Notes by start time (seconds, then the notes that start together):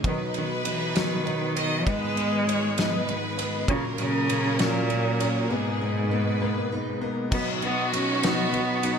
Already playing: G#3 C#4 D#4 G#4
0.02 B2 F#3 B3 D#4 B4, kick, ride
0.08 D#3
0.34 D#3 F#3 B3 D#4, ride
0.65 E3 F#3 B3 D#4, ride
0.95 D#3 F#3 B3 D#4 F#4, snare, ride
1.25 F#3 B3 D#4, ride
1.55 F#3 B3 D#4 F#4 D#5, ride
1.85 G#2 D#3 G#3 B3 D#4 B4, kick, ride
2.16 G#3 B3 D#4, ride
2.47 G#3 B3 D#4 C#5, ride
2.77 G#3 B3 D#4 G#4 B4, snare, ride
3.08 G#3 B3 D#4, ride
3.37 G#3 B3 D#4 G#4, ride
3.68 A#2 C#3 F#3 A#3 C#4 A#4, kick, ride
3.98 A#2 C#3 F#3 A#3 C#4 F#4, ride
4.29 A#2 F#3 A#3 C#4, ride
4.59 A#2 F#3 A#3 C#4 A#4, snare, ride
4.89 A#2 F#3 A#3 C#4 F#4, ride
5.19 A#2 F#3 A#3 C#4 A#4, ride
5.49 G#2 B2 G#3 A#3 B3 G#4
5.81 G#3 A#3 B3 D#4
6.10 G#3 A#3 B3 B4
6.41 G#3 A#3 B3
6.71 G#3 A#3 B3 D#4
7.01 G#3 A#3 B3 A#4
7.30 B2 F#3 B3 D#4 F#4, kick, crash
7.61 F#3 B3 D#4, ride
7.91 F#3 B3 C#4 D#4, ride
8.22 F#3 B3 D#4, snare, ride
8.27 B3
8.52 F#3 B3 D#4, ride
8.83 F#3 B3 D#4, ride